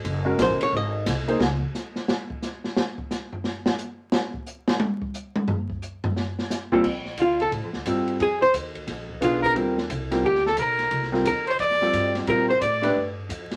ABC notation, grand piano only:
X:1
M:4/4
L:1/8
Q:"Swing" 1/4=177
K:Bbmix
V:1 name="Grand piano"
z [A,_D_GB]3 z3 [B,EAc] | z8 | z8 | z8 |
z6 z [B,,G,CF=A] | [K:Bb] z6 [G,CFA]2 | z6 [_CDF_A]2 | [G,CFB] z2 [G,CFB] z4 |
z [G,CFB] z3 [G,CFA]3 | [G,CFB] z2 [A,DG_c] z4 |]